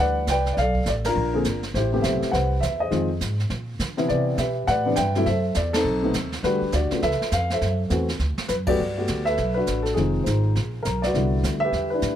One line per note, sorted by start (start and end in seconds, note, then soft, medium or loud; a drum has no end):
0.00 0.26 D2 medium
0.00 0.21 E3 medium
0.00 0.21 G3 medium
0.00 0.21 D4 medium
0.00 0.24 G4 medium
0.00 0.29 B4 medium
0.00 0.30 D5 medium
0.00 0.25 F#5 loud
0.27 0.56 C2 medium
0.27 0.56 B4 medium
0.27 0.53 G5 loud
0.27 snare medium
0.27 hi-hat pedal medium
0.31 0.51 D5 medium
0.46 snare soft
0.53 0.85 B1 medium
0.53 0.57 D5 medium
0.57 1.13 A4 medium
0.57 0.86 D5 medium
0.57 0.85 F5 medium
0.57 brush sweep soft
0.57 snare soft
0.75 kick medium
0.86 1.14 A1 medium
0.86 0.93 D5 medium
0.86 snare soft
0.86 hi-hat pedal soft
1.04 1.60 D4 medium
1.04 1.61 F4 medium
1.04 1.60 A#4 loud
1.04 snare medium
1.04 ride medium
1.15 1.44 A#1 medium
1.15 brush sweep soft
1.34 1.44 D3 medium
1.34 1.44 A#3 medium
1.34 1.44 C4 medium
1.34 1.44 G#4 medium
1.44 1.73 G1 medium
1.44 snare medium
1.44 hi-hat pedal medium
1.63 snare soft
1.74 2.02 A1 medium
1.74 2.30 E4 medium
1.74 1.92 G4 medium
1.74 2.01 C5 medium
1.74 brush sweep soft
1.74 snare soft
1.93 2.31 C3 medium
1.93 2.31 A3 medium
1.93 2.31 B3 medium
1.93 2.03 G4 medium
2.02 2.21 B1 medium
2.02 2.58 G4 medium
2.02 2.32 C5 medium
2.02 2.33 E5 medium
2.02 snare medium
2.02 hi-hat pedal soft
2.22 muted upright bass stroke soft
2.22 snare soft
2.31 2.61 C2 medium
2.31 2.87 B4 medium
2.31 2.80 C5 medium
2.31 2.59 F#5 medium
2.31 brush sweep soft
2.31 snare soft
2.61 2.91 E2 medium
2.61 2.80 E5 medium
2.61 snare medium
2.61 hi-hat pedal medium
2.80 3.36 G#4 soft
2.80 3.35 C5 medium
2.80 3.08 D#5 medium
2.90 3.20 F2 medium
2.90 3.07 D#3 medium
2.90 3.07 G#3 medium
2.90 3.08 C4 medium
2.90 3.08 F4 medium
2.90 brush sweep soft
2.90 snare soft
3.21 3.49 G#2 medium
3.21 snare soft
3.21 hi-hat pedal medium
3.40 snare soft
3.50 3.78 A#2 medium
3.50 brush sweep medium
3.50 snare soft
3.79 4.08 D3 medium
3.79 snare medium
3.79 hi-hat pedal medium
3.97 4.36 C3 medium
3.97 4.36 E3 medium
3.97 4.36 B3 medium
3.97 4.36 E4 medium
3.97 snare soft
4.08 4.37 C3 medium
4.08 4.38 G4 medium
4.08 4.39 B4 medium
4.08 4.36 D5 medium
4.08 brush sweep soft
4.08 snare soft
4.38 4.66 B2 medium
4.38 4.93 G4 medium
4.38 4.68 B4 medium
4.38 4.68 E5 medium
4.38 snare medium
4.38 hi-hat pedal soft
4.67 4.96 A2 medium
4.67 4.96 B4 medium
4.67 5.23 D5 medium
4.67 4.98 F#5 loud
4.67 brush sweep medium
4.67 snare soft
4.85 4.95 C3 medium
4.85 4.96 E3 medium
4.85 4.96 B3 medium
4.85 4.96 D4 medium
4.96 5.25 G2 medium
4.96 5.24 B4 medium
4.96 5.25 E5 medium
4.96 5.26 G5 loud
4.96 snare medium
4.96 hi-hat pedal medium
5.15 5.25 C3 medium
5.15 5.25 F#3 medium
5.15 5.26 A3 medium
5.15 5.26 E4 medium
5.15 snare soft
5.26 5.55 F#2 medium
5.26 5.72 A4 medium
5.26 5.82 C5 medium
5.26 5.56 E5 loud
5.26 brush sweep soft
5.26 snare soft
5.54 5.84 E2 medium
5.54 5.74 D5 medium
5.54 snare medium
5.54 hi-hat pedal medium
5.73 6.29 C4 medium
5.73 6.02 D#4 medium
5.73 6.28 A4 loud
5.73 snare medium
5.73 ride medium
5.85 6.13 B1 medium
5.85 brush sweep soft
6.03 6.13 C3 medium
6.03 6.13 A3 medium
6.03 6.13 B3 medium
6.03 6.13 D#4 medium
6.14 6.42 D#2 medium
6.14 snare medium
6.14 hi-hat pedal medium
6.32 snare soft
6.43 6.60 E2 medium
6.43 6.60 D3 medium
6.43 6.60 G3 medium
6.43 6.60 A3 medium
6.43 6.99 D4 medium
6.43 6.60 F#4 medium
6.43 6.73 G4 medium
6.43 6.71 B4 medium
6.43 brush sweep soft
6.43 snare soft
6.62 muted upright bass stroke soft
6.72 6.90 D2 medium
6.72 7.01 F#4 medium
6.72 7.01 G4 medium
6.72 7.00 D5 medium
6.72 snare medium
6.72 hi-hat pedal soft
6.91 7.01 C#3 medium
6.91 7.01 A3 medium
6.91 7.01 B3 medium
6.91 7.01 F4 medium
6.91 muted upright bass stroke soft
6.91 snare soft
7.02 7.19 C#2 medium
7.02 7.52 A4 medium
7.02 7.57 B4 medium
7.02 7.30 E5 loud
7.02 brush sweep soft
7.02 snare soft
7.11 snare soft
7.21 muted upright bass stroke soft
7.21 snare medium
7.31 7.60 F2 medium
7.31 7.49 F5 medium
7.31 snare medium
7.31 hi-hat pedal medium
7.50 8.06 A4 medium
7.50 8.06 C5 medium
7.50 7.79 E5 medium
7.50 snare medium
7.61 7.90 F#2 medium
7.61 brush sweep soft
7.61 snare soft
7.90 8.19 E2 medium
7.90 8.07 E3 medium
7.90 8.07 A3 medium
7.90 8.07 C4 medium
7.90 8.07 F#4 medium
7.90 snare medium
7.90 hi-hat pedal soft
8.09 snare soft
8.19 8.36 D2 medium
8.19 snare soft
8.38 muted upright bass stroke soft
8.38 snare medium
8.48 8.78 F#2 medium
8.48 8.53 B4 medium
8.48 snare medium
8.48 hi-hat pedal medium
8.66 8.78 F#3 medium
8.66 8.78 A3 medium
8.66 8.78 B3 medium
8.66 8.96 F#4 medium
8.66 8.78 G4 medium
8.66 9.23 B4 medium
8.66 9.22 D5 medium
8.66 kick medium
8.66 ride medium
8.78 9.07 G2 medium
8.78 brush sweep soft
8.97 9.35 A3 medium
8.97 9.36 B3 medium
8.97 9.35 F#4 medium
8.97 9.36 G4 medium
9.07 9.37 D2 medium
9.07 snare medium
9.07 hi-hat pedal medium
9.25 9.81 A4 medium
9.25 9.53 B4 medium
9.25 9.56 E5 loud
9.25 snare soft
9.37 9.66 B1 medium
9.37 brush sweep soft
9.37 snare soft
9.54 9.94 D4 medium
9.54 9.94 F#4 medium
9.54 9.82 B4 medium
9.67 9.96 A1 medium
9.67 snare medium
9.67 hi-hat pedal medium
9.83 9.95 A4 medium
9.83 snare soft
9.94 10.25 F1 medium
9.94 10.55 D#3 medium
9.94 10.56 G#3 soft
9.94 10.51 C4 medium
9.94 10.25 D#4 medium
9.94 10.56 F4 medium
9.94 10.22 G#4 medium
9.94 brush sweep soft
9.94 snare soft
10.23 10.55 G#1 medium
10.23 10.54 D#4 medium
10.23 10.81 G#4 soft
10.23 10.85 C5 medium
10.23 snare soft
10.23 hi-hat pedal soft
10.55 10.84 A#1 medium
10.55 brush sweep soft
10.55 snare soft
10.83 11.14 B1 medium
10.83 11.01 A#4 medium
10.83 snare medium
10.83 hi-hat pedal soft
11.02 11.59 F#4 medium
11.02 11.59 B4 medium
11.02 11.40 D5 medium
11.02 snare medium
11.14 11.43 C2 medium
11.14 11.96 D3 medium
11.14 11.96 G3 soft
11.14 11.96 B3 medium
11.14 11.92 E4 medium
11.14 brush sweep medium
11.14 snare soft
11.43 11.72 D2 medium
11.43 snare medium
11.43 hi-hat pedal medium
11.60 11.88 E5 loud
11.65 12.16 G4 medium
11.65 11.89 B4 medium
11.72 12.01 E2 medium
11.72 brush sweep soft
11.72 snare soft
11.90 12.16 D4 medium
11.90 12.16 E4 medium
11.90 12.16 B4 medium
12.02 12.16 A2 medium
12.02 snare medium
12.02 hi-hat pedal medium